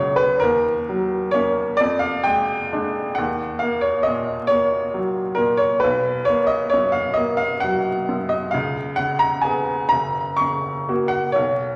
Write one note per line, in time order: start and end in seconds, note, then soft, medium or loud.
0.00 0.37 F#1 medium
0.00 0.44 C#2 soft
0.00 0.24 F#3 soft
0.00 0.44 A#3 medium
0.00 0.17 C#5 medium
0.00 0.44 D#5 loud
0.00 0.44 F5 medium
0.00 0.44 F#5 medium
0.16 0.40 B4 medium
0.40 1.76 D#2 medium
0.40 1.32 A#4 medium
0.89 1.61 F#3 medium
1.31 1.76 A#3 soft
1.31 1.76 C#4 soft
1.31 1.78 C#5 medium
1.77 3.15 F2 medium
1.77 2.01 D5 medium
1.99 2.24 F5 medium
2.23 2.71 G#3 soft
2.23 3.17 G5 medium
2.73 3.14 G#3 soft
2.73 3.14 D4 soft
3.15 5.79 D#2 medium
3.15 3.61 F#5 medium
3.59 4.33 A#3 soft
3.59 3.83 F5 medium
3.81 4.05 C#5 medium
4.03 4.48 D#5 medium
4.07 4.77 A#2 soft
4.47 5.21 A#3 soft
4.47 5.37 C#5 loud
4.94 5.65 F#3 soft
5.35 5.82 A#2 soft
5.35 5.59 A#4 medium
5.57 5.81 C#5 medium
5.80 8.51 B1 medium
5.80 6.26 B4 medium
6.25 7.02 A#3 soft
6.25 6.49 C#5 medium
6.47 6.72 D#5 medium
6.70 7.46 F#2 soft
6.70 6.94 C#5 medium
6.92 7.17 F5 medium
7.14 7.90 A#3 medium
7.14 7.39 D#5 medium
7.37 7.62 F5 medium
7.60 8.36 F#3 soft
7.60 8.30 F#5 medium
8.09 8.54 F#2 soft
8.29 8.53 D#5 medium
8.51 9.88 C#2 medium
8.51 8.98 F5 medium
8.96 9.73 C#3 soft
8.96 9.21 F#5 medium
9.19 9.44 A#5 medium
9.41 9.88 B3 soft
9.41 9.90 G#5 medium
9.46 9.88 G#4 soft
9.89 11.31 F#1 medium
9.89 10.39 A#5 medium
10.37 11.10 C#6 medium
10.41 11.17 C#3 soft
10.89 11.32 A#3 soft
10.89 11.32 F#4 soft
11.08 11.34 F#5 medium
11.32 11.76 B1 medium
11.32 11.76 C#5 medium